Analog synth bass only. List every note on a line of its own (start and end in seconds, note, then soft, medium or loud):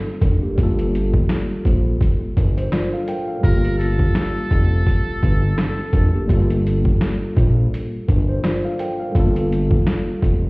0.22 0.40 F1 medium
0.58 1.21 G1 loud
1.66 1.97 A#1 medium
2.37 2.68 G1 medium
3.44 4.07 G1 loud
4.51 4.82 F1 loud
5.08 5.14 G1 medium
5.23 5.54 G1 loud
5.93 6.11 F1 medium
6.30 6.92 G1 loud
7.37 7.68 A#1 loud
8.09 8.40 G1 medium
9.16 9.78 G1 loud
10.23 10.50 F1 medium